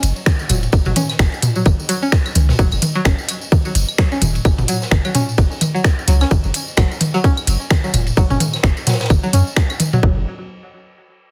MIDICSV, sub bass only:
0, 0, Header, 1, 2, 480
1, 0, Start_track
1, 0, Tempo, 465116
1, 751, Time_signature, 4, 2, 24, 8
1, 11674, End_track
2, 0, Start_track
2, 0, Title_t, "Sub bass"
2, 0, Program_c, 0, 38
2, 31, Note_on_c, 0, 30, 84
2, 125, Note_off_c, 0, 30, 0
2, 512, Note_on_c, 0, 28, 105
2, 686, Note_off_c, 0, 28, 0
2, 752, Note_on_c, 0, 30, 100
2, 845, Note_off_c, 0, 30, 0
2, 888, Note_on_c, 0, 30, 86
2, 958, Note_off_c, 0, 30, 0
2, 1232, Note_on_c, 0, 30, 100
2, 1325, Note_off_c, 0, 30, 0
2, 1712, Note_on_c, 0, 30, 89
2, 1805, Note_off_c, 0, 30, 0
2, 2432, Note_on_c, 0, 37, 98
2, 2606, Note_off_c, 0, 37, 0
2, 2672, Note_on_c, 0, 30, 100
2, 2765, Note_off_c, 0, 30, 0
2, 2809, Note_on_c, 0, 30, 89
2, 2879, Note_off_c, 0, 30, 0
2, 3153, Note_on_c, 0, 30, 98
2, 3246, Note_off_c, 0, 30, 0
2, 3871, Note_on_c, 0, 30, 86
2, 3965, Note_off_c, 0, 30, 0
2, 4352, Note_on_c, 0, 28, 101
2, 4526, Note_off_c, 0, 28, 0
2, 4593, Note_on_c, 0, 30, 99
2, 4685, Note_off_c, 0, 30, 0
2, 4728, Note_on_c, 0, 30, 90
2, 4798, Note_off_c, 0, 30, 0
2, 5073, Note_on_c, 0, 30, 102
2, 5165, Note_off_c, 0, 30, 0
2, 5553, Note_on_c, 0, 30, 94
2, 5646, Note_off_c, 0, 30, 0
2, 6273, Note_on_c, 0, 37, 97
2, 6446, Note_off_c, 0, 37, 0
2, 6513, Note_on_c, 0, 30, 104
2, 6606, Note_off_c, 0, 30, 0
2, 6650, Note_on_c, 0, 30, 90
2, 6719, Note_off_c, 0, 30, 0
2, 6993, Note_on_c, 0, 30, 96
2, 7086, Note_off_c, 0, 30, 0
2, 7713, Note_on_c, 0, 30, 81
2, 7805, Note_off_c, 0, 30, 0
2, 8191, Note_on_c, 0, 28, 102
2, 8366, Note_off_c, 0, 28, 0
2, 8433, Note_on_c, 0, 30, 99
2, 8526, Note_off_c, 0, 30, 0
2, 8569, Note_on_c, 0, 30, 89
2, 8639, Note_off_c, 0, 30, 0
2, 8913, Note_on_c, 0, 30, 98
2, 9006, Note_off_c, 0, 30, 0
2, 9392, Note_on_c, 0, 30, 88
2, 9485, Note_off_c, 0, 30, 0
2, 9631, Note_on_c, 0, 42, 98
2, 9725, Note_off_c, 0, 42, 0
2, 10352, Note_on_c, 0, 30, 98
2, 10575, Note_off_c, 0, 30, 0
2, 11674, End_track
0, 0, End_of_file